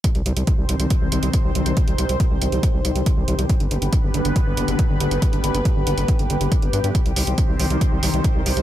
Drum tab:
HH |xxxxx-xxx-xxx-xx|xxxxx-xxx-xxx-xx|xxxxx-xxx-xxx-xx|xxxxx-xxxxxxxxxx|
BD |o---o---o---o---|o---o---o---o---|o---o---o---o---|o---o---o---o---|

HH |xxoxx-oxx-oxx-ox|
BD |o---o---o---o---|